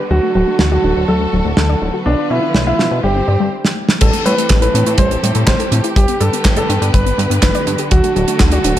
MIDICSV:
0, 0, Header, 1, 6, 480
1, 0, Start_track
1, 0, Key_signature, 0, "minor"
1, 0, Tempo, 487805
1, 107, Time_signature, 4, 2, 24, 8
1, 8652, End_track
2, 0, Start_track
2, 0, Title_t, "Grand piano"
2, 0, Program_c, 0, 0
2, 106, Note_on_c, 0, 66, 95
2, 296, Note_off_c, 0, 66, 0
2, 346, Note_on_c, 0, 66, 84
2, 630, Note_off_c, 0, 66, 0
2, 706, Note_on_c, 0, 66, 88
2, 990, Note_off_c, 0, 66, 0
2, 1064, Note_on_c, 0, 69, 89
2, 1444, Note_off_c, 0, 69, 0
2, 1546, Note_on_c, 0, 69, 81
2, 1925, Note_off_c, 0, 69, 0
2, 2025, Note_on_c, 0, 62, 94
2, 2215, Note_off_c, 0, 62, 0
2, 2267, Note_on_c, 0, 64, 87
2, 2550, Note_off_c, 0, 64, 0
2, 2626, Note_on_c, 0, 64, 89
2, 2910, Note_off_c, 0, 64, 0
2, 2986, Note_on_c, 0, 67, 88
2, 3364, Note_off_c, 0, 67, 0
2, 3947, Note_on_c, 0, 69, 97
2, 4136, Note_off_c, 0, 69, 0
2, 4188, Note_on_c, 0, 71, 96
2, 4471, Note_off_c, 0, 71, 0
2, 4547, Note_on_c, 0, 71, 92
2, 4831, Note_off_c, 0, 71, 0
2, 4906, Note_on_c, 0, 72, 95
2, 5285, Note_off_c, 0, 72, 0
2, 5388, Note_on_c, 0, 72, 90
2, 5766, Note_off_c, 0, 72, 0
2, 5867, Note_on_c, 0, 67, 99
2, 6056, Note_off_c, 0, 67, 0
2, 6105, Note_on_c, 0, 69, 97
2, 6390, Note_off_c, 0, 69, 0
2, 6466, Note_on_c, 0, 69, 103
2, 6750, Note_off_c, 0, 69, 0
2, 6827, Note_on_c, 0, 71, 95
2, 7205, Note_off_c, 0, 71, 0
2, 7307, Note_on_c, 0, 71, 86
2, 7685, Note_off_c, 0, 71, 0
2, 7787, Note_on_c, 0, 66, 104
2, 7976, Note_off_c, 0, 66, 0
2, 8026, Note_on_c, 0, 66, 95
2, 8310, Note_off_c, 0, 66, 0
2, 8387, Note_on_c, 0, 66, 95
2, 8652, Note_off_c, 0, 66, 0
2, 8652, End_track
3, 0, Start_track
3, 0, Title_t, "Synth arpeggio sound"
3, 0, Program_c, 1, 84
3, 107, Note_on_c, 1, 54, 92
3, 183, Note_off_c, 1, 54, 0
3, 226, Note_on_c, 1, 57, 72
3, 272, Note_off_c, 1, 57, 0
3, 346, Note_on_c, 1, 54, 95
3, 392, Note_off_c, 1, 54, 0
3, 467, Note_on_c, 1, 57, 73
3, 543, Note_off_c, 1, 57, 0
3, 587, Note_on_c, 1, 69, 78
3, 663, Note_off_c, 1, 69, 0
3, 707, Note_on_c, 1, 74, 97
3, 783, Note_off_c, 1, 74, 0
3, 827, Note_on_c, 1, 62, 104
3, 941, Note_off_c, 1, 62, 0
3, 946, Note_on_c, 1, 66, 76
3, 1023, Note_off_c, 1, 66, 0
3, 1067, Note_on_c, 1, 54, 104
3, 1143, Note_off_c, 1, 54, 0
3, 1187, Note_on_c, 1, 57, 72
3, 1232, Note_off_c, 1, 57, 0
3, 1308, Note_on_c, 1, 54, 93
3, 1353, Note_off_c, 1, 54, 0
3, 1428, Note_on_c, 1, 57, 81
3, 1503, Note_off_c, 1, 57, 0
3, 1547, Note_on_c, 1, 69, 81
3, 1623, Note_off_c, 1, 69, 0
3, 1667, Note_on_c, 1, 74, 101
3, 1743, Note_off_c, 1, 74, 0
3, 1786, Note_on_c, 1, 62, 93
3, 1900, Note_off_c, 1, 62, 0
3, 1906, Note_on_c, 1, 66, 76
3, 1982, Note_off_c, 1, 66, 0
3, 2026, Note_on_c, 1, 59, 98
3, 2102, Note_off_c, 1, 59, 0
3, 2147, Note_on_c, 1, 62, 73
3, 2193, Note_off_c, 1, 62, 0
3, 2266, Note_on_c, 1, 59, 91
3, 2312, Note_off_c, 1, 59, 0
3, 2386, Note_on_c, 1, 62, 75
3, 2462, Note_off_c, 1, 62, 0
3, 2506, Note_on_c, 1, 74, 79
3, 2582, Note_off_c, 1, 74, 0
3, 2625, Note_on_c, 1, 77, 92
3, 2702, Note_off_c, 1, 77, 0
3, 2745, Note_on_c, 1, 65, 99
3, 2860, Note_off_c, 1, 65, 0
3, 2866, Note_on_c, 1, 71, 76
3, 2943, Note_off_c, 1, 71, 0
3, 2986, Note_on_c, 1, 55, 100
3, 3062, Note_off_c, 1, 55, 0
3, 3106, Note_on_c, 1, 60, 72
3, 3152, Note_off_c, 1, 60, 0
3, 3227, Note_on_c, 1, 74, 77
3, 3341, Note_off_c, 1, 74, 0
3, 3346, Note_on_c, 1, 55, 102
3, 3422, Note_off_c, 1, 55, 0
3, 3945, Note_on_c, 1, 55, 99
3, 4022, Note_off_c, 1, 55, 0
3, 4067, Note_on_c, 1, 57, 76
3, 4112, Note_off_c, 1, 57, 0
3, 4186, Note_on_c, 1, 55, 104
3, 4232, Note_off_c, 1, 55, 0
3, 4306, Note_on_c, 1, 57, 76
3, 4383, Note_off_c, 1, 57, 0
3, 4426, Note_on_c, 1, 67, 85
3, 4502, Note_off_c, 1, 67, 0
3, 4546, Note_on_c, 1, 69, 99
3, 4623, Note_off_c, 1, 69, 0
3, 4665, Note_on_c, 1, 60, 106
3, 4780, Note_off_c, 1, 60, 0
3, 4786, Note_on_c, 1, 64, 78
3, 4862, Note_off_c, 1, 64, 0
3, 4906, Note_on_c, 1, 55, 105
3, 4982, Note_off_c, 1, 55, 0
3, 5026, Note_on_c, 1, 57, 82
3, 5072, Note_off_c, 1, 57, 0
3, 5146, Note_on_c, 1, 55, 102
3, 5192, Note_off_c, 1, 55, 0
3, 5266, Note_on_c, 1, 57, 80
3, 5342, Note_off_c, 1, 57, 0
3, 5386, Note_on_c, 1, 67, 84
3, 5462, Note_off_c, 1, 67, 0
3, 5507, Note_on_c, 1, 69, 105
3, 5583, Note_off_c, 1, 69, 0
3, 5628, Note_on_c, 1, 60, 99
3, 5741, Note_off_c, 1, 60, 0
3, 5748, Note_on_c, 1, 64, 82
3, 5823, Note_off_c, 1, 64, 0
3, 5867, Note_on_c, 1, 55, 102
3, 5943, Note_off_c, 1, 55, 0
3, 5988, Note_on_c, 1, 59, 79
3, 6033, Note_off_c, 1, 59, 0
3, 6108, Note_on_c, 1, 55, 98
3, 6153, Note_off_c, 1, 55, 0
3, 6228, Note_on_c, 1, 59, 77
3, 6304, Note_off_c, 1, 59, 0
3, 6347, Note_on_c, 1, 71, 85
3, 6423, Note_off_c, 1, 71, 0
3, 6467, Note_on_c, 1, 74, 100
3, 6543, Note_off_c, 1, 74, 0
3, 6588, Note_on_c, 1, 62, 104
3, 6701, Note_off_c, 1, 62, 0
3, 6707, Note_on_c, 1, 67, 78
3, 6783, Note_off_c, 1, 67, 0
3, 6827, Note_on_c, 1, 55, 108
3, 6903, Note_off_c, 1, 55, 0
3, 6947, Note_on_c, 1, 59, 79
3, 6992, Note_off_c, 1, 59, 0
3, 7067, Note_on_c, 1, 55, 106
3, 7112, Note_off_c, 1, 55, 0
3, 7187, Note_on_c, 1, 59, 81
3, 7263, Note_off_c, 1, 59, 0
3, 7307, Note_on_c, 1, 71, 84
3, 7383, Note_off_c, 1, 71, 0
3, 7427, Note_on_c, 1, 74, 105
3, 7503, Note_off_c, 1, 74, 0
3, 7547, Note_on_c, 1, 62, 98
3, 7661, Note_off_c, 1, 62, 0
3, 7667, Note_on_c, 1, 67, 76
3, 7743, Note_off_c, 1, 67, 0
3, 7787, Note_on_c, 1, 54, 97
3, 7863, Note_off_c, 1, 54, 0
3, 7907, Note_on_c, 1, 57, 76
3, 7953, Note_off_c, 1, 57, 0
3, 8026, Note_on_c, 1, 54, 104
3, 8072, Note_off_c, 1, 54, 0
3, 8146, Note_on_c, 1, 57, 78
3, 8223, Note_off_c, 1, 57, 0
3, 8267, Note_on_c, 1, 69, 81
3, 8343, Note_off_c, 1, 69, 0
3, 8387, Note_on_c, 1, 74, 98
3, 8463, Note_off_c, 1, 74, 0
3, 8506, Note_on_c, 1, 62, 108
3, 8620, Note_off_c, 1, 62, 0
3, 8652, End_track
4, 0, Start_track
4, 0, Title_t, "String section"
4, 0, Program_c, 2, 48
4, 0, Note_on_c, 2, 50, 71
4, 107, Note_on_c, 2, 54, 69
4, 107, Note_on_c, 2, 57, 68
4, 108, Note_on_c, 2, 66, 67
4, 108, Note_on_c, 2, 69, 84
4, 1989, Note_off_c, 2, 50, 0
4, 2008, Note_off_c, 2, 54, 0
4, 2008, Note_off_c, 2, 57, 0
4, 2008, Note_off_c, 2, 66, 0
4, 2008, Note_off_c, 2, 69, 0
4, 2025, Note_on_c, 2, 53, 63
4, 2025, Note_on_c, 2, 59, 68
4, 2025, Note_on_c, 2, 71, 79
4, 2026, Note_on_c, 2, 50, 74
4, 2026, Note_on_c, 2, 65, 66
4, 2974, Note_off_c, 2, 50, 0
4, 2976, Note_off_c, 2, 53, 0
4, 2977, Note_off_c, 2, 59, 0
4, 2977, Note_off_c, 2, 65, 0
4, 2977, Note_off_c, 2, 71, 0
4, 2986, Note_on_c, 2, 50, 64
4, 2986, Note_on_c, 2, 55, 61
4, 2986, Note_on_c, 2, 60, 65
4, 2986, Note_on_c, 2, 67, 60
4, 2986, Note_on_c, 2, 72, 75
4, 3462, Note_off_c, 2, 50, 0
4, 3462, Note_off_c, 2, 55, 0
4, 3462, Note_off_c, 2, 60, 0
4, 3462, Note_off_c, 2, 67, 0
4, 3462, Note_off_c, 2, 72, 0
4, 3946, Note_on_c, 2, 57, 72
4, 3946, Note_on_c, 2, 60, 73
4, 3946, Note_on_c, 2, 67, 72
4, 3946, Note_on_c, 2, 69, 86
4, 3947, Note_on_c, 2, 52, 79
4, 5847, Note_off_c, 2, 60, 0
4, 5848, Note_off_c, 2, 52, 0
4, 5848, Note_off_c, 2, 57, 0
4, 5848, Note_off_c, 2, 69, 0
4, 5867, Note_on_c, 2, 50, 82
4, 5867, Note_on_c, 2, 55, 74
4, 5867, Note_on_c, 2, 59, 70
4, 5867, Note_on_c, 2, 71, 90
4, 7748, Note_off_c, 2, 67, 0
4, 7768, Note_off_c, 2, 55, 0
4, 7768, Note_off_c, 2, 59, 0
4, 7768, Note_off_c, 2, 71, 0
4, 7787, Note_on_c, 2, 54, 75
4, 7787, Note_on_c, 2, 57, 77
4, 7787, Note_on_c, 2, 66, 75
4, 7787, Note_on_c, 2, 69, 89
4, 8652, Note_off_c, 2, 50, 0
4, 8652, Note_off_c, 2, 54, 0
4, 8652, Note_off_c, 2, 57, 0
4, 8652, Note_off_c, 2, 66, 0
4, 8652, Note_off_c, 2, 69, 0
4, 8652, End_track
5, 0, Start_track
5, 0, Title_t, "Analog synth bass"
5, 0, Program_c, 3, 38
5, 107, Note_on_c, 3, 38, 94
5, 199, Note_off_c, 3, 38, 0
5, 346, Note_on_c, 3, 26, 94
5, 439, Note_off_c, 3, 26, 0
5, 587, Note_on_c, 3, 38, 83
5, 770, Note_off_c, 3, 38, 0
5, 826, Note_on_c, 3, 26, 75
5, 918, Note_off_c, 3, 26, 0
5, 946, Note_on_c, 3, 26, 77
5, 1038, Note_off_c, 3, 26, 0
5, 1065, Note_on_c, 3, 38, 78
5, 1250, Note_off_c, 3, 38, 0
5, 1305, Note_on_c, 3, 26, 77
5, 1398, Note_off_c, 3, 26, 0
5, 1426, Note_on_c, 3, 26, 76
5, 1518, Note_off_c, 3, 26, 0
5, 1546, Note_on_c, 3, 38, 94
5, 1730, Note_off_c, 3, 38, 0
5, 1786, Note_on_c, 3, 26, 84
5, 1878, Note_off_c, 3, 26, 0
5, 2027, Note_on_c, 3, 35, 92
5, 2119, Note_off_c, 3, 35, 0
5, 2267, Note_on_c, 3, 47, 89
5, 2359, Note_off_c, 3, 47, 0
5, 2506, Note_on_c, 3, 35, 82
5, 2690, Note_off_c, 3, 35, 0
5, 2746, Note_on_c, 3, 47, 76
5, 2838, Note_off_c, 3, 47, 0
5, 2867, Note_on_c, 3, 47, 76
5, 2959, Note_off_c, 3, 47, 0
5, 2986, Note_on_c, 3, 31, 79
5, 3170, Note_off_c, 3, 31, 0
5, 3227, Note_on_c, 3, 43, 75
5, 3319, Note_off_c, 3, 43, 0
5, 3347, Note_on_c, 3, 43, 73
5, 3439, Note_off_c, 3, 43, 0
5, 3952, Note_on_c, 3, 33, 94
5, 4041, Note_off_c, 3, 33, 0
5, 4188, Note_on_c, 3, 45, 100
5, 4279, Note_off_c, 3, 45, 0
5, 4430, Note_on_c, 3, 33, 87
5, 4612, Note_off_c, 3, 33, 0
5, 4668, Note_on_c, 3, 45, 80
5, 4759, Note_off_c, 3, 45, 0
5, 4788, Note_on_c, 3, 45, 80
5, 4879, Note_off_c, 3, 45, 0
5, 4901, Note_on_c, 3, 33, 84
5, 5088, Note_off_c, 3, 33, 0
5, 5148, Note_on_c, 3, 45, 81
5, 5239, Note_off_c, 3, 45, 0
5, 5267, Note_on_c, 3, 45, 82
5, 5359, Note_off_c, 3, 45, 0
5, 5385, Note_on_c, 3, 33, 98
5, 5478, Note_off_c, 3, 33, 0
5, 5626, Note_on_c, 3, 45, 97
5, 5718, Note_off_c, 3, 45, 0
5, 5867, Note_on_c, 3, 31, 97
5, 5959, Note_off_c, 3, 31, 0
5, 6107, Note_on_c, 3, 43, 95
5, 6199, Note_off_c, 3, 43, 0
5, 6347, Note_on_c, 3, 31, 88
5, 6530, Note_off_c, 3, 31, 0
5, 6587, Note_on_c, 3, 43, 85
5, 6679, Note_off_c, 3, 43, 0
5, 6707, Note_on_c, 3, 43, 79
5, 6799, Note_off_c, 3, 43, 0
5, 6829, Note_on_c, 3, 31, 82
5, 7011, Note_off_c, 3, 31, 0
5, 7066, Note_on_c, 3, 43, 82
5, 7158, Note_off_c, 3, 43, 0
5, 7187, Note_on_c, 3, 43, 80
5, 7279, Note_off_c, 3, 43, 0
5, 7309, Note_on_c, 3, 31, 92
5, 7400, Note_off_c, 3, 31, 0
5, 7547, Note_on_c, 3, 43, 97
5, 7639, Note_off_c, 3, 43, 0
5, 7790, Note_on_c, 3, 38, 99
5, 7880, Note_off_c, 3, 38, 0
5, 8027, Note_on_c, 3, 26, 100
5, 8119, Note_off_c, 3, 26, 0
5, 8269, Note_on_c, 3, 38, 86
5, 8451, Note_off_c, 3, 38, 0
5, 8506, Note_on_c, 3, 26, 81
5, 8598, Note_off_c, 3, 26, 0
5, 8652, End_track
6, 0, Start_track
6, 0, Title_t, "Drums"
6, 580, Note_on_c, 9, 38, 109
6, 679, Note_off_c, 9, 38, 0
6, 1544, Note_on_c, 9, 38, 101
6, 1643, Note_off_c, 9, 38, 0
6, 2504, Note_on_c, 9, 38, 106
6, 2603, Note_off_c, 9, 38, 0
6, 2749, Note_on_c, 9, 38, 58
6, 2847, Note_off_c, 9, 38, 0
6, 3588, Note_on_c, 9, 38, 68
6, 3686, Note_off_c, 9, 38, 0
6, 3824, Note_on_c, 9, 38, 81
6, 3922, Note_off_c, 9, 38, 0
6, 3943, Note_on_c, 9, 49, 104
6, 3947, Note_on_c, 9, 42, 113
6, 3952, Note_on_c, 9, 36, 119
6, 4041, Note_off_c, 9, 49, 0
6, 4045, Note_off_c, 9, 42, 0
6, 4050, Note_off_c, 9, 36, 0
6, 4067, Note_on_c, 9, 42, 64
6, 4166, Note_off_c, 9, 42, 0
6, 4191, Note_on_c, 9, 42, 61
6, 4289, Note_off_c, 9, 42, 0
6, 4313, Note_on_c, 9, 42, 59
6, 4411, Note_off_c, 9, 42, 0
6, 4420, Note_on_c, 9, 42, 93
6, 4429, Note_on_c, 9, 39, 97
6, 4430, Note_on_c, 9, 36, 104
6, 4431, Note_on_c, 9, 38, 118
6, 4519, Note_off_c, 9, 42, 0
6, 4527, Note_off_c, 9, 39, 0
6, 4528, Note_off_c, 9, 36, 0
6, 4530, Note_off_c, 9, 38, 0
6, 4547, Note_on_c, 9, 42, 66
6, 4645, Note_off_c, 9, 42, 0
6, 4674, Note_on_c, 9, 42, 81
6, 4772, Note_off_c, 9, 42, 0
6, 4786, Note_on_c, 9, 42, 53
6, 4884, Note_off_c, 9, 42, 0
6, 4897, Note_on_c, 9, 42, 104
6, 4902, Note_on_c, 9, 36, 117
6, 4995, Note_off_c, 9, 42, 0
6, 5000, Note_off_c, 9, 36, 0
6, 5029, Note_on_c, 9, 42, 55
6, 5127, Note_off_c, 9, 42, 0
6, 5152, Note_on_c, 9, 42, 82
6, 5251, Note_off_c, 9, 42, 0
6, 5262, Note_on_c, 9, 42, 52
6, 5361, Note_off_c, 9, 42, 0
6, 5385, Note_on_c, 9, 36, 106
6, 5386, Note_on_c, 9, 39, 108
6, 5387, Note_on_c, 9, 38, 122
6, 5392, Note_on_c, 9, 42, 93
6, 5484, Note_off_c, 9, 36, 0
6, 5484, Note_off_c, 9, 39, 0
6, 5485, Note_off_c, 9, 38, 0
6, 5490, Note_off_c, 9, 42, 0
6, 5508, Note_on_c, 9, 42, 57
6, 5607, Note_off_c, 9, 42, 0
6, 5627, Note_on_c, 9, 42, 75
6, 5725, Note_off_c, 9, 42, 0
6, 5746, Note_on_c, 9, 42, 51
6, 5844, Note_off_c, 9, 42, 0
6, 5867, Note_on_c, 9, 36, 127
6, 5874, Note_on_c, 9, 42, 112
6, 5966, Note_off_c, 9, 36, 0
6, 5973, Note_off_c, 9, 42, 0
6, 5983, Note_on_c, 9, 42, 58
6, 6081, Note_off_c, 9, 42, 0
6, 6106, Note_on_c, 9, 42, 57
6, 6205, Note_off_c, 9, 42, 0
6, 6232, Note_on_c, 9, 42, 56
6, 6331, Note_off_c, 9, 42, 0
6, 6344, Note_on_c, 9, 39, 119
6, 6347, Note_on_c, 9, 36, 115
6, 6347, Note_on_c, 9, 42, 98
6, 6352, Note_on_c, 9, 38, 121
6, 6443, Note_off_c, 9, 39, 0
6, 6445, Note_off_c, 9, 36, 0
6, 6445, Note_off_c, 9, 42, 0
6, 6451, Note_off_c, 9, 38, 0
6, 6459, Note_on_c, 9, 42, 62
6, 6557, Note_off_c, 9, 42, 0
6, 6590, Note_on_c, 9, 42, 79
6, 6689, Note_off_c, 9, 42, 0
6, 6711, Note_on_c, 9, 42, 52
6, 6810, Note_off_c, 9, 42, 0
6, 6829, Note_on_c, 9, 36, 120
6, 6829, Note_on_c, 9, 42, 94
6, 6927, Note_off_c, 9, 42, 0
6, 6928, Note_off_c, 9, 36, 0
6, 6952, Note_on_c, 9, 42, 52
6, 7050, Note_off_c, 9, 42, 0
6, 7076, Note_on_c, 9, 42, 72
6, 7174, Note_off_c, 9, 42, 0
6, 7195, Note_on_c, 9, 42, 56
6, 7293, Note_off_c, 9, 42, 0
6, 7302, Note_on_c, 9, 42, 103
6, 7307, Note_on_c, 9, 38, 120
6, 7307, Note_on_c, 9, 39, 96
6, 7309, Note_on_c, 9, 36, 108
6, 7400, Note_off_c, 9, 42, 0
6, 7405, Note_off_c, 9, 38, 0
6, 7406, Note_off_c, 9, 39, 0
6, 7407, Note_off_c, 9, 36, 0
6, 7426, Note_on_c, 9, 42, 54
6, 7524, Note_off_c, 9, 42, 0
6, 7546, Note_on_c, 9, 42, 74
6, 7645, Note_off_c, 9, 42, 0
6, 7659, Note_on_c, 9, 42, 50
6, 7757, Note_off_c, 9, 42, 0
6, 7784, Note_on_c, 9, 42, 93
6, 7790, Note_on_c, 9, 36, 127
6, 7883, Note_off_c, 9, 42, 0
6, 7888, Note_off_c, 9, 36, 0
6, 7910, Note_on_c, 9, 42, 54
6, 8008, Note_off_c, 9, 42, 0
6, 8031, Note_on_c, 9, 42, 49
6, 8129, Note_off_c, 9, 42, 0
6, 8145, Note_on_c, 9, 42, 56
6, 8243, Note_off_c, 9, 42, 0
6, 8262, Note_on_c, 9, 38, 114
6, 8265, Note_on_c, 9, 39, 100
6, 8266, Note_on_c, 9, 42, 101
6, 8270, Note_on_c, 9, 36, 123
6, 8361, Note_off_c, 9, 38, 0
6, 8363, Note_off_c, 9, 39, 0
6, 8365, Note_off_c, 9, 42, 0
6, 8368, Note_off_c, 9, 36, 0
6, 8379, Note_on_c, 9, 42, 56
6, 8477, Note_off_c, 9, 42, 0
6, 8505, Note_on_c, 9, 42, 84
6, 8603, Note_off_c, 9, 42, 0
6, 8652, End_track
0, 0, End_of_file